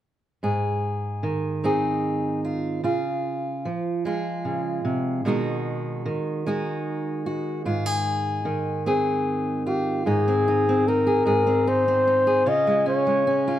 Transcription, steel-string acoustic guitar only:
0, 0, Header, 1, 2, 480
1, 0, Start_track
1, 0, Key_signature, -4, "major"
1, 0, Tempo, 803213
1, 262, Time_signature, 3, 2, 24, 8
1, 8123, End_track
2, 0, Start_track
2, 0, Title_t, "Steel-string acoustic guitar"
2, 0, Program_c, 0, 25
2, 256, Note_on_c, 0, 44, 49
2, 260, Note_on_c, 0, 68, 47
2, 735, Note_on_c, 0, 51, 45
2, 978, Note_on_c, 0, 60, 39
2, 982, Note_on_c, 0, 63, 42
2, 985, Note_off_c, 0, 68, 0
2, 987, Note_on_c, 0, 68, 49
2, 1459, Note_off_c, 0, 68, 0
2, 1461, Note_on_c, 0, 65, 43
2, 1669, Note_off_c, 0, 44, 0
2, 1670, Note_off_c, 0, 60, 0
2, 1672, Note_off_c, 0, 63, 0
2, 1692, Note_off_c, 0, 65, 0
2, 1694, Note_on_c, 0, 49, 50
2, 1697, Note_off_c, 0, 51, 0
2, 1699, Note_on_c, 0, 65, 51
2, 2177, Note_off_c, 0, 49, 0
2, 2183, Note_on_c, 0, 53, 51
2, 2419, Note_off_c, 0, 65, 0
2, 2421, Note_on_c, 0, 56, 44
2, 2429, Note_on_c, 0, 65, 46
2, 2658, Note_on_c, 0, 49, 46
2, 2894, Note_off_c, 0, 49, 0
2, 2896, Note_on_c, 0, 48, 50
2, 3111, Note_off_c, 0, 53, 0
2, 3135, Note_off_c, 0, 48, 0
2, 3137, Note_on_c, 0, 47, 57
2, 3142, Note_on_c, 0, 51, 45
2, 3143, Note_off_c, 0, 65, 0
2, 3144, Note_off_c, 0, 56, 0
2, 3146, Note_on_c, 0, 56, 45
2, 3150, Note_on_c, 0, 63, 46
2, 3155, Note_on_c, 0, 66, 51
2, 3612, Note_off_c, 0, 51, 0
2, 3617, Note_off_c, 0, 47, 0
2, 3619, Note_on_c, 0, 51, 53
2, 3861, Note_off_c, 0, 56, 0
2, 3863, Note_on_c, 0, 56, 46
2, 3865, Note_off_c, 0, 63, 0
2, 3865, Note_off_c, 0, 66, 0
2, 3868, Note_on_c, 0, 63, 43
2, 3873, Note_on_c, 0, 66, 53
2, 4332, Note_off_c, 0, 66, 0
2, 4340, Note_on_c, 0, 66, 44
2, 4549, Note_off_c, 0, 66, 0
2, 4574, Note_on_c, 0, 44, 55
2, 4577, Note_on_c, 0, 65, 51
2, 4593, Note_off_c, 0, 63, 0
2, 4696, Note_off_c, 0, 65, 0
2, 4696, Note_on_c, 0, 68, 42
2, 5043, Note_off_c, 0, 51, 0
2, 5050, Note_on_c, 0, 51, 48
2, 5294, Note_off_c, 0, 56, 0
2, 5296, Note_off_c, 0, 68, 0
2, 5296, Note_on_c, 0, 60, 43
2, 5299, Note_on_c, 0, 63, 43
2, 5302, Note_on_c, 0, 68, 47
2, 5773, Note_off_c, 0, 68, 0
2, 5776, Note_on_c, 0, 65, 44
2, 5988, Note_off_c, 0, 44, 0
2, 5988, Note_off_c, 0, 60, 0
2, 5990, Note_off_c, 0, 63, 0
2, 6012, Note_on_c, 0, 44, 55
2, 6016, Note_on_c, 0, 63, 45
2, 6017, Note_off_c, 0, 65, 0
2, 6142, Note_on_c, 0, 60, 44
2, 6254, Note_off_c, 0, 63, 0
2, 6261, Note_on_c, 0, 63, 43
2, 6380, Note_off_c, 0, 60, 0
2, 6387, Note_on_c, 0, 60, 46
2, 6495, Note_off_c, 0, 63, 0
2, 6502, Note_on_c, 0, 63, 47
2, 6613, Note_on_c, 0, 68, 46
2, 6720, Note_off_c, 0, 44, 0
2, 6727, Note_on_c, 0, 44, 55
2, 6730, Note_off_c, 0, 68, 0
2, 6733, Note_on_c, 0, 68, 51
2, 6846, Note_off_c, 0, 60, 0
2, 6853, Note_on_c, 0, 60, 45
2, 6969, Note_off_c, 0, 63, 0
2, 6976, Note_on_c, 0, 63, 49
2, 7092, Note_off_c, 0, 60, 0
2, 7099, Note_on_c, 0, 60, 45
2, 7208, Note_off_c, 0, 63, 0
2, 7215, Note_on_c, 0, 63, 47
2, 7329, Note_off_c, 0, 68, 0
2, 7332, Note_on_c, 0, 68, 46
2, 7424, Note_off_c, 0, 44, 0
2, 7428, Note_off_c, 0, 63, 0
2, 7430, Note_off_c, 0, 60, 0
2, 7446, Note_on_c, 0, 49, 56
2, 7447, Note_off_c, 0, 68, 0
2, 7450, Note_on_c, 0, 65, 50
2, 7455, Note_off_c, 0, 51, 0
2, 7572, Note_on_c, 0, 56, 45
2, 7685, Note_on_c, 0, 61, 47
2, 7806, Note_off_c, 0, 56, 0
2, 7808, Note_on_c, 0, 56, 45
2, 7923, Note_off_c, 0, 61, 0
2, 7930, Note_on_c, 0, 61, 52
2, 8045, Note_off_c, 0, 65, 0
2, 8052, Note_on_c, 0, 65, 52
2, 8123, Note_off_c, 0, 49, 0
2, 8123, Note_off_c, 0, 56, 0
2, 8123, Note_off_c, 0, 61, 0
2, 8123, Note_off_c, 0, 65, 0
2, 8123, End_track
0, 0, End_of_file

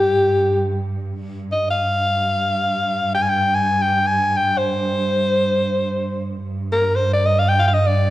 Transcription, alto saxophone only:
0, 0, Header, 1, 2, 480
1, 0, Start_track
1, 0, Tempo, 500000
1, 7777, End_track
2, 0, Start_track
2, 0, Title_t, "Alto saxophone"
2, 0, Program_c, 0, 65
2, 0, Note_on_c, 0, 67, 70
2, 713, Note_off_c, 0, 67, 0
2, 1461, Note_on_c, 0, 75, 68
2, 1624, Note_off_c, 0, 75, 0
2, 1637, Note_on_c, 0, 77, 80
2, 2992, Note_off_c, 0, 77, 0
2, 3019, Note_on_c, 0, 79, 80
2, 3095, Note_on_c, 0, 80, 70
2, 3110, Note_off_c, 0, 79, 0
2, 3163, Note_on_c, 0, 79, 78
2, 3177, Note_off_c, 0, 80, 0
2, 3404, Note_on_c, 0, 80, 80
2, 3419, Note_off_c, 0, 79, 0
2, 3665, Note_on_c, 0, 79, 79
2, 3679, Note_off_c, 0, 80, 0
2, 3905, Note_on_c, 0, 80, 88
2, 3919, Note_off_c, 0, 79, 0
2, 4194, Note_on_c, 0, 79, 77
2, 4209, Note_off_c, 0, 80, 0
2, 4396, Note_on_c, 0, 72, 75
2, 4410, Note_off_c, 0, 79, 0
2, 6011, Note_off_c, 0, 72, 0
2, 6454, Note_on_c, 0, 70, 75
2, 6681, Note_on_c, 0, 72, 70
2, 6695, Note_off_c, 0, 70, 0
2, 6829, Note_off_c, 0, 72, 0
2, 6847, Note_on_c, 0, 74, 82
2, 6967, Note_on_c, 0, 75, 82
2, 6981, Note_off_c, 0, 74, 0
2, 7095, Note_on_c, 0, 77, 82
2, 7109, Note_off_c, 0, 75, 0
2, 7189, Note_on_c, 0, 79, 83
2, 7204, Note_off_c, 0, 77, 0
2, 7290, Note_on_c, 0, 77, 81
2, 7304, Note_off_c, 0, 79, 0
2, 7314, Note_on_c, 0, 79, 69
2, 7328, Note_off_c, 0, 77, 0
2, 7369, Note_on_c, 0, 77, 81
2, 7384, Note_off_c, 0, 79, 0
2, 7427, Note_on_c, 0, 75, 76
2, 7441, Note_off_c, 0, 77, 0
2, 7551, Note_on_c, 0, 74, 79
2, 7565, Note_off_c, 0, 75, 0
2, 7777, Note_off_c, 0, 74, 0
2, 7777, End_track
0, 0, End_of_file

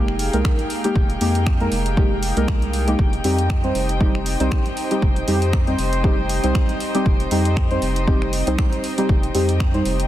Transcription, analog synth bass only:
0, 0, Header, 1, 2, 480
1, 0, Start_track
1, 0, Tempo, 508475
1, 903, Time_signature, 4, 2, 24, 8
1, 9511, End_track
2, 0, Start_track
2, 0, Title_t, "Analog synth bass"
2, 0, Program_c, 0, 38
2, 0, Note_on_c, 0, 29, 89
2, 278, Note_off_c, 0, 29, 0
2, 316, Note_on_c, 0, 36, 94
2, 404, Note_off_c, 0, 36, 0
2, 902, Note_on_c, 0, 29, 97
2, 1104, Note_off_c, 0, 29, 0
2, 1141, Note_on_c, 0, 41, 90
2, 1592, Note_off_c, 0, 41, 0
2, 1622, Note_on_c, 0, 29, 85
2, 2198, Note_off_c, 0, 29, 0
2, 2234, Note_on_c, 0, 36, 93
2, 2323, Note_off_c, 0, 36, 0
2, 2342, Note_on_c, 0, 36, 84
2, 2792, Note_off_c, 0, 36, 0
2, 2822, Note_on_c, 0, 29, 98
2, 3024, Note_off_c, 0, 29, 0
2, 3060, Note_on_c, 0, 41, 87
2, 3511, Note_off_c, 0, 41, 0
2, 3542, Note_on_c, 0, 29, 89
2, 4118, Note_off_c, 0, 29, 0
2, 4155, Note_on_c, 0, 36, 92
2, 4243, Note_off_c, 0, 36, 0
2, 4742, Note_on_c, 0, 29, 100
2, 4945, Note_off_c, 0, 29, 0
2, 4981, Note_on_c, 0, 41, 92
2, 5432, Note_off_c, 0, 41, 0
2, 5463, Note_on_c, 0, 29, 86
2, 6038, Note_off_c, 0, 29, 0
2, 6078, Note_on_c, 0, 36, 94
2, 6165, Note_off_c, 0, 36, 0
2, 6663, Note_on_c, 0, 29, 99
2, 6865, Note_off_c, 0, 29, 0
2, 6903, Note_on_c, 0, 41, 90
2, 7353, Note_off_c, 0, 41, 0
2, 7383, Note_on_c, 0, 29, 89
2, 7958, Note_off_c, 0, 29, 0
2, 7997, Note_on_c, 0, 36, 95
2, 8084, Note_off_c, 0, 36, 0
2, 8583, Note_on_c, 0, 29, 101
2, 8785, Note_off_c, 0, 29, 0
2, 8823, Note_on_c, 0, 41, 90
2, 9272, Note_off_c, 0, 41, 0
2, 9303, Note_on_c, 0, 29, 90
2, 9511, Note_off_c, 0, 29, 0
2, 9511, End_track
0, 0, End_of_file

